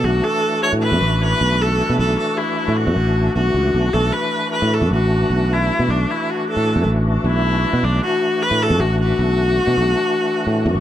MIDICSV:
0, 0, Header, 1, 4, 480
1, 0, Start_track
1, 0, Key_signature, 2, "minor"
1, 0, Tempo, 389358
1, 53, Time_signature, 5, 2, 24, 8
1, 13315, End_track
2, 0, Start_track
2, 0, Title_t, "Viola"
2, 0, Program_c, 0, 41
2, 53, Note_on_c, 0, 66, 93
2, 295, Note_on_c, 0, 69, 104
2, 313, Note_off_c, 0, 66, 0
2, 770, Note_off_c, 0, 69, 0
2, 777, Note_on_c, 0, 73, 102
2, 884, Note_off_c, 0, 73, 0
2, 1021, Note_on_c, 0, 71, 92
2, 1464, Note_off_c, 0, 71, 0
2, 1521, Note_on_c, 0, 71, 103
2, 1990, Note_on_c, 0, 69, 94
2, 2009, Note_off_c, 0, 71, 0
2, 2456, Note_off_c, 0, 69, 0
2, 2464, Note_on_c, 0, 69, 95
2, 2682, Note_off_c, 0, 69, 0
2, 2700, Note_on_c, 0, 69, 86
2, 2927, Note_on_c, 0, 64, 81
2, 2946, Note_off_c, 0, 69, 0
2, 3404, Note_on_c, 0, 66, 88
2, 3422, Note_off_c, 0, 64, 0
2, 4129, Note_off_c, 0, 66, 0
2, 4134, Note_on_c, 0, 66, 90
2, 4847, Note_on_c, 0, 69, 96
2, 4866, Note_off_c, 0, 66, 0
2, 5090, Note_on_c, 0, 71, 93
2, 5108, Note_off_c, 0, 69, 0
2, 5569, Note_off_c, 0, 71, 0
2, 5577, Note_on_c, 0, 71, 89
2, 5842, Note_on_c, 0, 69, 79
2, 5861, Note_off_c, 0, 71, 0
2, 6069, Note_off_c, 0, 69, 0
2, 6076, Note_on_c, 0, 66, 85
2, 6818, Note_on_c, 0, 64, 89
2, 6837, Note_off_c, 0, 66, 0
2, 7276, Note_on_c, 0, 62, 81
2, 7294, Note_off_c, 0, 64, 0
2, 7527, Note_on_c, 0, 64, 81
2, 7545, Note_off_c, 0, 62, 0
2, 7765, Note_on_c, 0, 66, 81
2, 7784, Note_off_c, 0, 64, 0
2, 7991, Note_off_c, 0, 66, 0
2, 8015, Note_on_c, 0, 69, 80
2, 8444, Note_off_c, 0, 69, 0
2, 8975, Note_on_c, 0, 64, 86
2, 9670, Note_on_c, 0, 62, 95
2, 9688, Note_off_c, 0, 64, 0
2, 9894, Note_off_c, 0, 62, 0
2, 9901, Note_on_c, 0, 66, 102
2, 10386, Note_on_c, 0, 71, 101
2, 10405, Note_off_c, 0, 66, 0
2, 10632, Note_on_c, 0, 69, 98
2, 10651, Note_off_c, 0, 71, 0
2, 10852, Note_on_c, 0, 66, 90
2, 10871, Note_off_c, 0, 69, 0
2, 11093, Note_off_c, 0, 66, 0
2, 11106, Note_on_c, 0, 66, 109
2, 13315, Note_off_c, 0, 66, 0
2, 13315, End_track
3, 0, Start_track
3, 0, Title_t, "Tonewheel organ"
3, 0, Program_c, 1, 16
3, 48, Note_on_c, 1, 57, 52
3, 54, Note_on_c, 1, 52, 61
3, 57, Note_on_c, 1, 66, 66
3, 61, Note_on_c, 1, 62, 53
3, 4803, Note_off_c, 1, 57, 0
3, 4806, Note_off_c, 1, 52, 0
3, 4807, Note_off_c, 1, 66, 0
3, 4810, Note_off_c, 1, 62, 0
3, 4847, Note_on_c, 1, 57, 58
3, 4852, Note_on_c, 1, 52, 62
3, 4857, Note_on_c, 1, 62, 59
3, 4860, Note_on_c, 1, 66, 60
3, 9603, Note_off_c, 1, 57, 0
3, 9605, Note_off_c, 1, 52, 0
3, 9607, Note_off_c, 1, 62, 0
3, 9609, Note_off_c, 1, 66, 0
3, 9645, Note_on_c, 1, 57, 57
3, 9647, Note_on_c, 1, 52, 58
3, 9651, Note_on_c, 1, 62, 54
3, 9655, Note_on_c, 1, 66, 62
3, 13315, Note_off_c, 1, 52, 0
3, 13315, Note_off_c, 1, 57, 0
3, 13315, Note_off_c, 1, 62, 0
3, 13315, Note_off_c, 1, 66, 0
3, 13315, End_track
4, 0, Start_track
4, 0, Title_t, "Fretless electric bass"
4, 0, Program_c, 2, 35
4, 48, Note_on_c, 2, 35, 86
4, 245, Note_off_c, 2, 35, 0
4, 896, Note_on_c, 2, 45, 68
4, 1131, Note_on_c, 2, 42, 93
4, 1150, Note_off_c, 2, 45, 0
4, 1230, Note_off_c, 2, 42, 0
4, 1243, Note_on_c, 2, 33, 78
4, 1637, Note_off_c, 2, 33, 0
4, 1739, Note_on_c, 2, 35, 84
4, 2224, Note_off_c, 2, 35, 0
4, 2336, Note_on_c, 2, 47, 83
4, 2433, Note_off_c, 2, 47, 0
4, 2455, Note_on_c, 2, 35, 92
4, 2649, Note_off_c, 2, 35, 0
4, 3303, Note_on_c, 2, 45, 67
4, 3538, Note_on_c, 2, 42, 98
4, 3556, Note_off_c, 2, 45, 0
4, 3634, Note_off_c, 2, 42, 0
4, 3651, Note_on_c, 2, 33, 83
4, 4042, Note_off_c, 2, 33, 0
4, 4139, Note_on_c, 2, 35, 76
4, 4332, Note_off_c, 2, 35, 0
4, 4369, Note_on_c, 2, 37, 70
4, 4587, Note_off_c, 2, 37, 0
4, 4618, Note_on_c, 2, 35, 77
4, 4833, Note_off_c, 2, 35, 0
4, 4858, Note_on_c, 2, 35, 84
4, 5052, Note_off_c, 2, 35, 0
4, 5696, Note_on_c, 2, 45, 74
4, 5936, Note_on_c, 2, 42, 92
4, 5955, Note_off_c, 2, 45, 0
4, 6033, Note_off_c, 2, 42, 0
4, 6056, Note_on_c, 2, 33, 86
4, 6445, Note_off_c, 2, 33, 0
4, 6536, Note_on_c, 2, 35, 75
4, 7023, Note_off_c, 2, 35, 0
4, 7144, Note_on_c, 2, 47, 83
4, 7238, Note_off_c, 2, 47, 0
4, 7255, Note_on_c, 2, 35, 83
4, 7450, Note_off_c, 2, 35, 0
4, 8094, Note_on_c, 2, 45, 68
4, 8331, Note_on_c, 2, 42, 88
4, 8349, Note_off_c, 2, 45, 0
4, 8430, Note_off_c, 2, 42, 0
4, 8442, Note_on_c, 2, 33, 82
4, 8837, Note_off_c, 2, 33, 0
4, 8927, Note_on_c, 2, 35, 80
4, 9418, Note_off_c, 2, 35, 0
4, 9533, Note_on_c, 2, 47, 92
4, 9631, Note_off_c, 2, 47, 0
4, 9656, Note_on_c, 2, 35, 89
4, 9851, Note_off_c, 2, 35, 0
4, 10491, Note_on_c, 2, 45, 68
4, 10729, Note_on_c, 2, 42, 90
4, 10747, Note_off_c, 2, 45, 0
4, 10829, Note_off_c, 2, 42, 0
4, 10842, Note_on_c, 2, 33, 82
4, 11237, Note_off_c, 2, 33, 0
4, 11329, Note_on_c, 2, 35, 87
4, 11817, Note_off_c, 2, 35, 0
4, 11924, Note_on_c, 2, 47, 82
4, 12025, Note_off_c, 2, 47, 0
4, 12052, Note_on_c, 2, 35, 94
4, 12247, Note_off_c, 2, 35, 0
4, 12904, Note_on_c, 2, 45, 72
4, 13136, Note_on_c, 2, 42, 92
4, 13154, Note_off_c, 2, 45, 0
4, 13231, Note_off_c, 2, 42, 0
4, 13253, Note_on_c, 2, 33, 78
4, 13315, Note_off_c, 2, 33, 0
4, 13315, End_track
0, 0, End_of_file